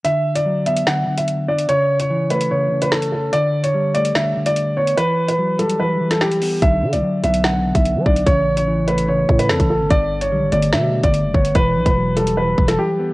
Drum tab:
HH |x--x--xx---xx--x|x--x--xx---x-x--|x--x--xx---xx--x|x--x--xx---x-xo-|
SD |--------o-------|------------o---|--------o-------|-----------oo---|
BD |----------------|----------------|----------------|----------------|

HH |x--x--xx---xx--x|x--x--xx---x-x--|x--x--xx---xx--x|x--x--xx---x----|
SD |--------o-------|------------o---|--------o-------|-----------o----|
BD |o----------o--o-|o---------o--o--|o----------o--o-|o--o------o-----|